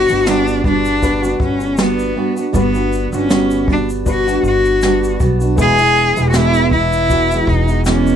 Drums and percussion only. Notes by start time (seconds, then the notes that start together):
0.09 shaker
0.27 snare, shaker
0.47 shaker
0.64 kick
0.85 shaker
1.02 kick, shaker
1.24 shaker
1.40 kick
1.60 shaker
1.77 snare, shaker
1.99 shaker
2.37 shaker
2.54 kick, shaker
2.75 shaker
2.93 shaker
3.13 shaker
3.30 snare, shaker
3.51 shaker
3.68 kick
3.90 shaker
4.06 kick, shaker
4.28 shaker
4.44 shaker
4.65 shaker
4.82 snare, shaker
5.04 shaker
5.20 kick, shaker
5.41 shaker
5.58 kick, shaker
5.78 shaker
6.17 shaker
6.34 snare, shaker
6.54 shaker
6.71 kick
6.93 shaker
7.10 kick, shaker
7.31 shaker
7.47 kick
7.68 shaker
7.85 snare, shaker
8.07 shaker